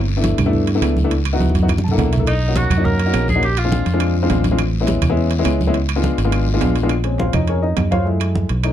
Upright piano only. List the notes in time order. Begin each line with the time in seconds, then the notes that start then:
0.17 A3 B3 D4 E4
0.46 A3 B3 D4 E4
0.75 A3 B3 D4 E4
1.04 A3 B3 D4 E4
1.33 B3 D#4 E4 F#4
1.62 B3 D#4 E4 F#4
1.84 A5
1.91 A#3 D4 E4 A4 F#5
1.98 F#5
2.12 E5
2.19 A#3 D4 E4 A4
2.48 A#3 C#4 D#4 F#4
2.77 A#3 C#4 D#4 F#4
3.06 A#3 C#4 D#4 F#4
3.35 A#3 C#4 D#4 F#4
3.65 G#3 C4 D4 F4
3.94 G#3 C4 D4 F4
4.23 G#3 C4 D4 F4
4.51 G#3 C4 D4 F4
4.81 G#3 B3 C#4 E4
5.10 G#3 B3 C#4 E4
5.39 G#3 B3 C#4 E4
5.67 G#3 B3 C#4 E4
5.96 G#3 B3 D4 F4
6.25 G#3 B3 D4 F4
6.54 G#3 B3 D4 F4
6.83 G#3 B3 D4 F4
7.04 G#3 C4 C#4
7.19 F4 C5 C#5 F5
7.34 D#4 D#5
7.49 C#4 G#4 A#4 C#5
7.62 D#4 D#5
7.91 F4 C5 C#5 F5
8.05 G#3 A3 E4
8.63 A3 C#4 D#4